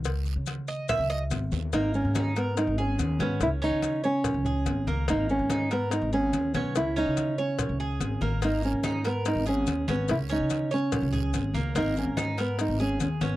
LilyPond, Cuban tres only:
\new Staff \with { instrumentName = "Cuban tres" } { \time 4/4 \key gis \minor \tempo 4 = 144 r4. dis''8 e''8 dis''8 r4 | ais4 dis'8 ais'4 gis'4 cis'8~ | cis'8 cis'4 cis''4 gis'4 ais8 | ais4 dis'8 ais'4 gis'4 cis'8~ |
cis'8 cis'4 cis''4 gis'4 ais8 | ais4 dis'8 ais'4 gis'4 cis'8~ | cis'8 cis'4 cis''4 gis'4 ais8 | ais4 dis'8 ais'4 gis'4 cis'8 | }